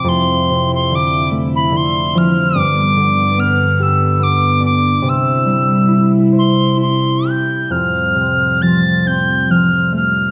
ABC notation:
X:1
M:3/4
L:1/16
Q:1/4=70
K:Ddor
V:1 name="Tin whistle"
c'3 c' d'2 z b c'2 f'2 | d'4 f'2 e'2 d'2 d'2 | e'4- e' z c'2 c'2 g'2 | f'4 a'2 g'2 f'2 f'2 |]
V:2 name="Harp" clef=bass
F,,2 C,2 D,2 A,2 D,2 F,2 | G,,2 D,2 B,2 G2 B,2 D2 | C,2 G,2 E2 c2 E2 G2 | F,,2 C,2 F,2 C2 F,2 A,2 |]
V:3 name="String section" clef=bass
[F,,C,E]12 | [G,,D,B,]12 | [C,G,E]12 | [A,,F,]12 |]